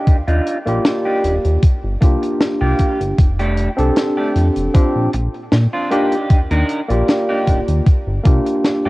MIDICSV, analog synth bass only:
0, 0, Header, 1, 2, 480
1, 0, Start_track
1, 0, Tempo, 779221
1, 45, Time_signature, 4, 2, 24, 8
1, 5478, End_track
2, 0, Start_track
2, 0, Title_t, "Analog synth bass"
2, 0, Program_c, 0, 38
2, 44, Note_on_c, 0, 39, 42
2, 146, Note_off_c, 0, 39, 0
2, 172, Note_on_c, 0, 39, 86
2, 251, Note_off_c, 0, 39, 0
2, 412, Note_on_c, 0, 34, 95
2, 491, Note_off_c, 0, 34, 0
2, 764, Note_on_c, 0, 27, 91
2, 855, Note_off_c, 0, 27, 0
2, 893, Note_on_c, 0, 39, 86
2, 972, Note_off_c, 0, 39, 0
2, 1133, Note_on_c, 0, 31, 81
2, 1212, Note_off_c, 0, 31, 0
2, 1243, Note_on_c, 0, 36, 87
2, 1334, Note_off_c, 0, 36, 0
2, 1612, Note_on_c, 0, 36, 82
2, 1692, Note_off_c, 0, 36, 0
2, 1853, Note_on_c, 0, 31, 99
2, 1932, Note_off_c, 0, 31, 0
2, 1963, Note_on_c, 0, 29, 92
2, 2272, Note_off_c, 0, 29, 0
2, 2332, Note_on_c, 0, 36, 89
2, 2412, Note_off_c, 0, 36, 0
2, 2685, Note_on_c, 0, 41, 91
2, 2775, Note_off_c, 0, 41, 0
2, 2813, Note_on_c, 0, 29, 81
2, 2892, Note_off_c, 0, 29, 0
2, 2924, Note_on_c, 0, 34, 41
2, 3026, Note_off_c, 0, 34, 0
2, 3052, Note_on_c, 0, 34, 81
2, 3132, Note_off_c, 0, 34, 0
2, 3165, Note_on_c, 0, 34, 89
2, 3255, Note_off_c, 0, 34, 0
2, 3294, Note_on_c, 0, 46, 44
2, 3383, Note_off_c, 0, 46, 0
2, 3405, Note_on_c, 0, 46, 100
2, 3495, Note_off_c, 0, 46, 0
2, 3884, Note_on_c, 0, 39, 43
2, 3987, Note_off_c, 0, 39, 0
2, 4013, Note_on_c, 0, 39, 91
2, 4092, Note_off_c, 0, 39, 0
2, 4254, Note_on_c, 0, 34, 93
2, 4332, Note_off_c, 0, 34, 0
2, 4605, Note_on_c, 0, 27, 89
2, 4695, Note_off_c, 0, 27, 0
2, 4734, Note_on_c, 0, 39, 83
2, 4813, Note_off_c, 0, 39, 0
2, 4973, Note_on_c, 0, 31, 82
2, 5052, Note_off_c, 0, 31, 0
2, 5084, Note_on_c, 0, 36, 86
2, 5175, Note_off_c, 0, 36, 0
2, 5452, Note_on_c, 0, 43, 96
2, 5478, Note_off_c, 0, 43, 0
2, 5478, End_track
0, 0, End_of_file